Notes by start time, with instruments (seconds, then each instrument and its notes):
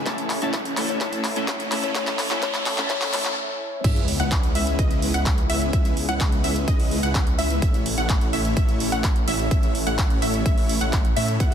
Already playing: analog synth pad E4, riser
0.06 detuned saw bass A1, clean electric guitar A2 A3 C#4 E4 A4, analog synth pad A3 C#4, supersaw synth A3 C#4 E4 C#5 E5, kick, clap, closed hi-hat
0.18 closed hi-hat
0.30 clap, open hi-hat
0.41 detuned saw bass A1, clean electric guitar A2 A3 C#4 E4 A4, supersaw synth A3 C#4 E4 C#5 F#5, closed hi-hat
0.54 kick, clap, closed hi-hat
0.65 closed hi-hat
0.76 detuned saw bass A1, clean electric guitar A2 A3 C#4 E4 A4, supersaw synth A3 C#4 E4 C#5 E5, clap, open hi-hat
0.89 kalimba C#5, closed hi-hat
1.00 detuned saw bass A1, clean electric guitar A2 A3 C#4 E4 A4, supersaw synth A3 C#4 E4 C#5 E5, kick, clap, closed hi-hat
1.13 closed hi-hat
1.24 clap, open hi-hat
1.35 detuned saw bass A1, clean electric guitar A2 A3 C#4 E4 A4, supersaw synth A3 C#4 E4 C#5 F#5, closed hi-hat
1.48 kick, clap, closed hi-hat
1.60 closed hi-hat
1.71 detuned saw bass A1, clean electric guitar A2 A3 C#4 E4 A4, supersaw synth A3 C#4 E4 C#5 E5, clap, open hi-hat
1.83 kalimba C#5, closed hi-hat
1.95 detuned saw bass A1, clean electric guitar A2 A3 C#4 E4 A4, supersaw synth A3 C#4 E4 C#5 E5, kalimba C#5, kick, clap, closed hi-hat
2.07 clap, closed hi-hat
2.19 clap, open hi-hat
2.30 detuned saw bass A1, clean electric guitar A2 A3 C#4 E4 A4, supersaw synth A3 C#4 E4 C#5 F#5, clap, closed hi-hat
2.42 detuned saw bass A1, clean electric guitar A2 A3 C#4 E4 A4, supersaw synth A3 C#4 E4 C#5 E5, kalimba C#5, kick, clap, closed hi-hat
2.54 clap, closed hi-hat
2.66 clap, open hi-hat
2.77 detuned saw bass A1, clean electric guitar A2 A3 C#4 E4 A4, supersaw synth A3 C#4 E4 C#5 F#5, clap, closed hi-hat
2.89 detuned saw bass A1, clean electric guitar A2 A3 C#4 E4 A4, supersaw synth A3 C#4 E4 C#5 E5, kalimba C#5, kick, clap, closed hi-hat
3.02 clap, open hi-hat
3.13 detuned saw bass A1, clean electric guitar A2 A3 C#4 E4 A4, supersaw synth A3 C#4 E4 C#5 E5, kalimba C#5, clap, open hi-hat
3.25 clap, closed hi-hat
3.84 detuned saw bass C#2, analog synth pad C#3 G#3 B3 E4, supersaw synth G#3 C#4 E4 B4 E5, synth pluck E5, kick, closed hi-hat, crash, sub drop
3.96 closed hi-hat
4.08 open hi-hat
4.20 detuned saw bass C#2, supersaw synth G#3 C#4 E4 B4 F#5, synth pluck F#5, closed hi-hat
4.32 kick, clap, closed hi-hat
4.43 closed hi-hat
4.55 detuned saw bass C#2, supersaw synth G#3 C#4 E4 B4 E5, synth pluck E5, open hi-hat
4.67 closed hi-hat
4.79 detuned saw bass C#2, supersaw synth G#3 C#4 E4 B4 D#5, synth pluck D#5, kick, closed hi-hat
4.91 closed hi-hat
5.02 open hi-hat
5.14 detuned saw bass C#2, supersaw synth G#3 C#4 E4 B4 F#5, synth pluck F#5, closed hi-hat
5.26 kick, clap, closed hi-hat
5.38 closed hi-hat
5.50 detuned saw bass C#2, supersaw synth G#3 C#4 E4 B4 E5, synth pluck E5, open hi-hat
5.61 closed hi-hat
5.73 detuned saw bass C#2, supersaw synth G#3 C#4 E4 B4 E5, synth pluck E5, kick, closed hi-hat
5.85 closed hi-hat
5.97 open hi-hat
6.09 detuned saw bass C#2, supersaw synth G#3 C#4 E4 B4 F#5, synth pluck F#5, closed hi-hat
6.21 kick, clap, closed hi-hat
6.32 closed hi-hat
6.44 detuned saw bass C#2, supersaw synth G#3 C#4 E4 B4 E5, synth pluck E5, open hi-hat
6.56 closed hi-hat
6.68 detuned saw bass C#2, supersaw synth G#3 C#4 E4 B4 D#5, synth pluck D#5, kick, closed hi-hat
6.80 open hi-hat
6.91 open hi-hat
7.03 detuned saw bass C#2, supersaw synth G#3 C#4 E4 B4 F#5, synth pluck F#5, closed hi-hat
7.15 kick, clap, closed hi-hat
7.27 closed hi-hat
7.39 detuned saw bass C#2, supersaw synth G#3 C#4 E4 B4 E5, synth pluck E5, open hi-hat
7.50 closed hi-hat
7.62 detuned saw bass A1, supersaw synth A3 C#4 E4 C#5 E5, analog synth pad A3 C#4 E4, synth pluck E5, kick, closed hi-hat
7.74 closed hi-hat
7.86 open hi-hat
7.98 detuned saw bass A1, supersaw synth A3 C#4 E4 C#5 F#5, synth pluck F#5, closed hi-hat
8.09 kick, clap, closed hi-hat
8.21 closed hi-hat
8.33 detuned saw bass A1, supersaw synth A3 C#4 E4 C#5 E5, synth pluck E5, open hi-hat
8.45 closed hi-hat
8.57 detuned saw bass A1, supersaw synth A3 C#4 E4 C#5 E5, synth pluck E5, kick, closed hi-hat
8.69 closed hi-hat
8.80 open hi-hat
8.92 detuned saw bass A1, supersaw synth A3 C#4 E4 C#5 F#5, synth pluck F#5, closed hi-hat
9.04 kick, clap, closed hi-hat
9.16 closed hi-hat
9.27 detuned saw bass A1, supersaw synth A3 C#4 E4 C#5 E5, synth pluck E5, open hi-hat
9.39 closed hi-hat
9.51 detuned saw bass A1, supersaw synth A3 C#4 E4 C#5 E5, synth pluck E5, kick, closed hi-hat
9.63 closed hi-hat
9.75 open hi-hat
9.87 detuned saw bass A1, supersaw synth A3 C#4 E4 C#5 F#5, synth pluck F#5, closed hi-hat
9.98 kick, clap, closed hi-hat
10.10 closed hi-hat
10.22 detuned saw bass A1, supersaw synth A3 C#4 E4 C#5 E5, synth pluck E5, open hi-hat
10.34 closed hi-hat
10.46 detuned saw bass A1, supersaw synth A3 C#4 E4 C#5 E5, synth pluck E5, kick, closed hi-hat
10.58 open hi-hat
10.69 open hi-hat
10.81 detuned saw bass A1, supersaw synth A3 C#4 E4 C#5 F#5, synth pluck F#5, closed hi-hat
10.93 kick, clap, closed hi-hat
11.05 closed hi-hat
11.17 detuned saw bass A2, supersaw synth A3 C#4 E4 C#5 E5, synth pluck E5, open hi-hat
11.28 closed hi-hat
11.40 detuned saw bass E2, analog synth pad E3 F#4 G#4, supersaw synth G#3 E4 F#4 B4 F#5, synth pluck F#5, kick, closed hi-hat